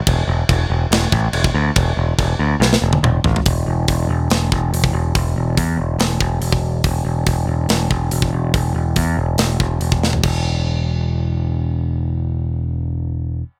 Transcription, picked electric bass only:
X:1
M:4/4
L:1/8
Q:1/4=141
K:Clyd
V:1 name="Picked electric bass" clef=bass
E,,, E,,, E,,, E,,, E,,, A,,, E,,, D,, | E,,, E,,, E,,, D,, B,,, E,,, E,,, A,,, | E,,, E,,, E,,, E,,, E,,, E,,, E,,, E,,, | E,,, E,,, E,, E,,, E,,, E,,, E,,,2 |
E,,, E,,, E,,, E,,, E,,, E,,, E,,, E,,, | E,,, E,,, E,, E,,, E,,, E,,, E,,,2 | E,,,8- | E,,,8 |]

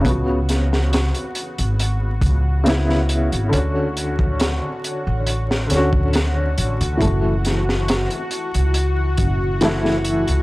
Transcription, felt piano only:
X:1
M:4/4
L:1/8
Q:1/4=69
K:F#m
V:1 name="Felt piano"
[C,B,F]6 [C,B,E]2 | [D,CF]4- [D,CF] [D,CF]3 | [E,A,F]6 [E,A,E]2 |]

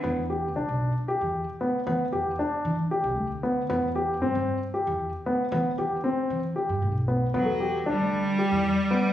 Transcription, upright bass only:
X:1
M:7/8
L:1/16
Q:1/4=115
K:Em
V:1 name="Upright bass" clef=bass
E,,4 B,,, B,,,2 z2 E,,2 z3 | E, z E,,2 z2 E,2 z B,,, D,,4 | E,,4 G,, G,,2 z2 E,,2 z3 | E, z E,,2 z2 E,2 z G,, B,,,4 |
E,,4 D,, D,,2 z2 E,,2 z3 |]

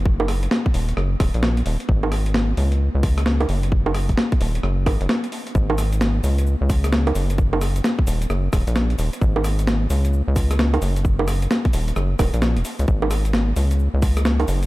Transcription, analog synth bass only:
X:1
M:4/4
L:1/16
Q:"Swing 16ths" 1/4=131
K:D#phr
V:1 name="Analog synth bass" clef=bass
F,,,4 z2 D,,,2 F,,,2 D,,, A,,,3 D,,, z | G,,,6 C,,3 C,,4- C,, F,,,2- | F,,,4 z2 D,,,2 F,,,2 G,,, F,,, z4 | G,,,6 C,,3 C,,4- C,, F,,,2- |
F,,,4 z2 D,,,2 F,,,2 D,,, A,,,3 D,,, z | G,,,6 C,,3 C,,4- C,, F,,,2- | F,,,4 z2 D,,,2 F,,,2 D,,, A,,,2 D,,, z C,, | G,,,6 C,,3 C,,4- C,, F,,,2 |]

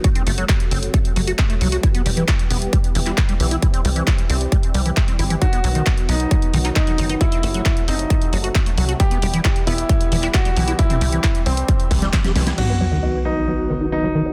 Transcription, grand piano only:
X:1
M:4/4
L:1/8
Q:1/4=134
K:Em
V:1 name="Grand piano"
z8 | z8 | z8 | F3 ^D3 D2 |
E3 ^D2 z3 | G3 E3 F2 | E3 C2 z3 | F3 ^D3 D2 |]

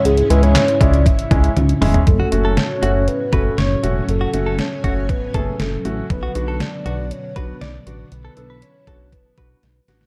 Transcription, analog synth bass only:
X:1
M:4/4
L:1/16
Q:1/4=119
K:F#m
V:1 name="Analog synth bass" clef=bass
C,,2 C,,3 z C,,3 z C,,2 C,,2 E,,,2 | F,,,2 F,,,3 z F,,,3 z F,,,2 F,,,2 E,,,2 | F,,,2 F,,,3 z F,,,3 z F,,,2 F,,,2 A,,,2 | B,,,2 B,,,3 z B,,,3 z B,,,2 B,,,2 A,,,2 |
B,,,2 B,,,3 z B,,,3 z B,,,2 B,,,2 A,,,2 |]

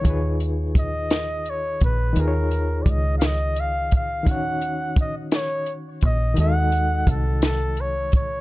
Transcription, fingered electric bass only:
X:1
M:6/8
L:1/8
Q:3/8=57
K:Ebm
V:1 name="Fingered electric bass" clef=bass
E,,4- E,, B,,, | E,,2 D,,4 | E,,4- E,, B,,, | E,,2 =C,,4 |]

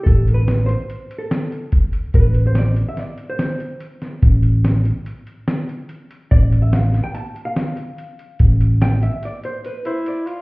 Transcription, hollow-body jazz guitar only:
X:1
M:5/4
L:1/16
Q:1/4=144
K:Am
V:1 name="Hollow-body jazz guitar"
A3 B3 c4- c A4 z4 z | B3 c d3 e d3 c8- c- | c z16 z3 | d3 e f3 g a3 f8- f- |
f z3 g2 e2 d2 c2 B2 c2 d4 |]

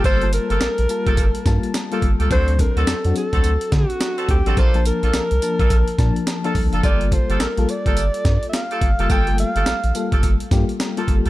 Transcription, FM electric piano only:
X:1
M:4/4
L:1/16
Q:"Swing 16ths" 1/4=106
K:Gm
V:1 name="FM electric piano"
[G,B,FA] [G,B,Fa]4 z [G,B,Fa]3 z [G,B,Fa]3 [G,B,FA]3 | [^F,CDA]2 [F,CDA]3 [F,CD^F]6- [F,CDF] z3 [F,CDA] | z [F,B,Da]4 z [F,B,Da]3 z [F,B,Da]3 [F,B,DA]3 | [G,B,FA]2 [G,B,FA]3 [G,B,FA]6- [G,B,FA] z3 [G,B,FA]- |
[G,B,FA] [G,A,B,FA]4 z [G,B,FA]3 z [G,B,FG]3 [G,B,FA]3 |]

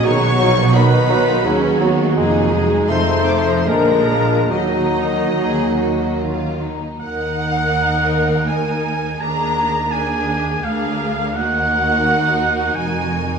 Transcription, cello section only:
X:1
M:3/4
L:1/8
Q:1/4=83
K:Ebm
V:1 name="Cello section" clef=bass
=B,,4 ^D,,2 | F,,2 F,,2 B,,2 | E,4- E, z | E,,6 |
E,,4 =D,,2 | E,,4 F,,2 |]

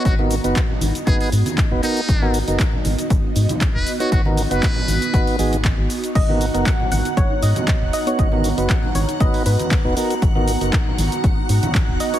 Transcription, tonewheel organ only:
X:1
M:4/4
L:1/16
Q:"Swing 16ths" 1/4=118
K:G#m
V:1 name="Tonewheel organ"
[B,DFc] [B,DFA] z [B,DFB] z4 [B,DFB]2 z3 [B,DFB] [B,DFA] z | z [B,DFA] z [B,DFA] z8 z3 [B,DFc]- | [B,DFc] [B,DFA] z [B,DFB] z4 [B,DFB]2 [B,DFG] z4 z | z [B,DFA] z [B,DFA] z8 z3 [B,DFc]- |
[B,DFc] [B,DFA] z [B,DFB] z4 [B,DFB]2 z3 [B,DFB] [B,DFA] z | z [B,DFA] z [B,DFA] z8 z3 [B,DFc] |]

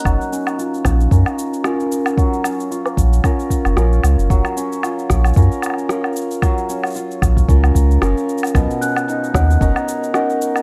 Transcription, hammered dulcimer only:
X:1
M:4/4
L:1/8
Q:"Swing 16ths" 1/4=113
K:F#
V:1 name="Hammered dulcimer"
F, C E2 [CEA]2 [CEA]2 | F, C E2 [CEA]2 [CEA]2 | F, C E2 [CEA]2 [CEA]2 | F, C E2 [CEA]2 [CEA]2 |
B,, C D2 [CDA]2 [CDA]2 |]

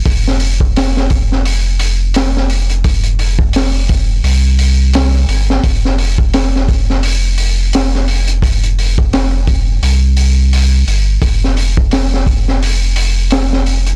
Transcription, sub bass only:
X:1
M:4/4
L:1/8
Q:"Swing 16ths" 1/4=86
K:Cphr
V:1 name="Sub bass" clef=bass
F,,,8- | F,,,2 F,,,2 C,,3 G,,, | F,,,8- | F,,,2 F,,,2 C,,3 G,,, |
F,,,8 |]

